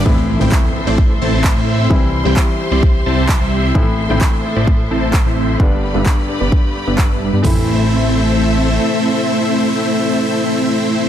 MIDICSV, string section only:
0, 0, Header, 1, 2, 480
1, 0, Start_track
1, 0, Key_signature, 0, "minor"
1, 0, Tempo, 461538
1, 62, Time_signature, 4, 2, 24, 8
1, 11533, End_track
2, 0, Start_track
2, 0, Title_t, "String section"
2, 0, Program_c, 0, 48
2, 61, Note_on_c, 0, 84, 92
2, 62, Note_on_c, 0, 69, 79
2, 62, Note_on_c, 0, 72, 72
2, 62, Note_on_c, 0, 76, 74
2, 1963, Note_off_c, 0, 69, 0
2, 1963, Note_off_c, 0, 72, 0
2, 1963, Note_off_c, 0, 76, 0
2, 1985, Note_on_c, 0, 67, 77
2, 1985, Note_on_c, 0, 72, 74
2, 1985, Note_on_c, 0, 76, 72
2, 3884, Note_off_c, 0, 67, 0
2, 3884, Note_off_c, 0, 72, 0
2, 3901, Note_on_c, 0, 69, 79
2, 3902, Note_on_c, 0, 72, 72
2, 5780, Note_off_c, 0, 84, 0
2, 5785, Note_off_c, 0, 76, 0
2, 5803, Note_off_c, 0, 69, 0
2, 5803, Note_off_c, 0, 72, 0
2, 5823, Note_on_c, 0, 67, 77
2, 5823, Note_on_c, 0, 83, 86
2, 5824, Note_on_c, 0, 71, 73
2, 5824, Note_on_c, 0, 74, 73
2, 7724, Note_off_c, 0, 67, 0
2, 7724, Note_off_c, 0, 71, 0
2, 7724, Note_off_c, 0, 74, 0
2, 7724, Note_off_c, 0, 83, 0
2, 7745, Note_on_c, 0, 69, 71
2, 7745, Note_on_c, 0, 72, 72
2, 7745, Note_on_c, 0, 76, 86
2, 7746, Note_on_c, 0, 57, 75
2, 11533, Note_off_c, 0, 57, 0
2, 11533, Note_off_c, 0, 69, 0
2, 11533, Note_off_c, 0, 72, 0
2, 11533, Note_off_c, 0, 76, 0
2, 11533, End_track
0, 0, End_of_file